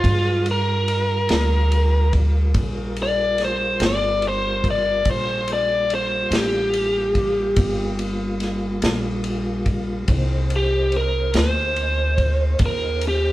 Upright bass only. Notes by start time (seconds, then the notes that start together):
0.04 G2
1.30 D2
2.55 A#1
3.80 G1
5.05 A#1
6.31 A1
7.57 G1
8.83 A#1
10.09 C2
11.34 D2
12.60 D#2